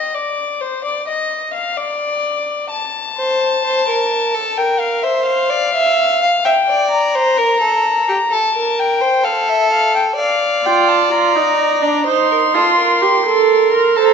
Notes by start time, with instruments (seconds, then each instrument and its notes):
Already playing: violin D#5
0.14 violin D5
0.61 violin C5
0.84 violin D5
1.08 violin D#5
1.54 violin F5
1.77 violin D5
2.71 violin A5
3.18 violin C5
3.65 violin C5
3.88 violin A#4
4.34 violin A4
4.57 violin A#4 G5
4.79 violin F5
5.02 violin C5 E5
5.26 violin F5
5.50 violin D5
5.74 violin E5
6.22 violin F5
6.45 violin E5 G5
6.69 violin D5
6.91 violin A#5
7.15 violin C5
7.37 violin A#4
7.60 violin A4
8.09 violin G4
8.31 violin A4 A5
8.56 violin A#4
8.79 violin G5
9.01 violin C5
9.24 violin A4 F5
9.49 violin E5
9.72 violin F5
9.95 violin G5
10.18 violin D5 F5
10.64 viola F4, violin G5
10.88 violin A5
11.11 viola F4, violin A#5
11.36 viola D#4
11.82 viola D4
12.05 viola D#4, violin C5 C6
12.31 violin A#4
12.53 viola F4, violin A4
12.78 violin A#4
13.02 viola G4
13.26 viola A4
13.72 viola A#4
13.96 viola A4, violin C5 A5
14.05 violin A#5